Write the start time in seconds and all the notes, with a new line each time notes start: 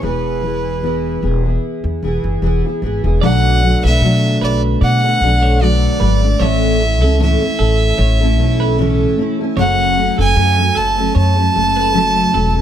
0.02 E1 E3 B3 E4 G#4 B4
0.42 E3 B3 E4 G#4
0.83 E3 B3 E4 G#4
1.22 E1 E3 B3 E4 G#4
1.44 B3 E4 G#4
1.84 E2
2.02 E1 E3 B3 E4 G#4
2.24 F#1
2.42 E1 E3 B3 E4 G#4
2.64 B3 E4 G#4
2.82 G#1 E3 B3 E4 G#4
3.04 E1 B3 E4 G#4
3.21 B1 B2 D3 F#3 A3 B3 D4 A4 D5 F#5
3.63 F#3 A3 D4 A4
3.84 B1 A3 D4 A4 B4 E5
4.01 B2 F#3 A3 D4 A4
4.41 B1 B4 D5
4.81 B2 D5 F#5
5.04 A3 D4 A4
5.21 B1 F#3 A3 D4 A4
5.43 C#5
5.61 B2 F#3 A3 D4 A4 D5
6.00 G#1 F#3 A3 D4 A4 B4
6.22 A3 D4 A4
6.39 A1 A2 E3 A3 C#4 E4 A4 C#5 E5
6.80 A3 C#4 E4 A4
7.01 C#2 A3 C#4 E4 A4
7.20 A2 E3 A3 C#4 E4 A4 E5
7.42 A3 C#4 E4 A4
7.59 A1 A4
7.98 A1 C#5
8.20 A3 C#4 E4 A4
8.39 B1 A3 C#4 E4 A4
8.60 B4
8.78 A2 E3 A3 C#4 E4 A4
9.18 A3 C#4 E4 A4
9.39 A3 C#4 E4 A4
9.56 F#1 F#2 C#3 F#3 A3 C#4 A4 C#5 F#5
9.96 F#3 A3 C#4 A4
10.18 F#1 F#3 A3 C#4 A4 G#5
10.36 F#2 C#3 F#3 A3 C#4 A4
10.57 F#3 A3 C#4 A4
10.75 F#1 A4 A5
10.97 F#3 A3 C#4 A4
11.15 F#2 C#5 A5
11.37 F#3 A3 C#4 A4
11.54 F#1 F#3 A3 C#4 A4
11.77 B4
11.93 F#2 C#3 F#3 A3 C#4 A4
12.33 E1 F#3 A3 C#4 A4
12.55 F#3 A3 C#4 A4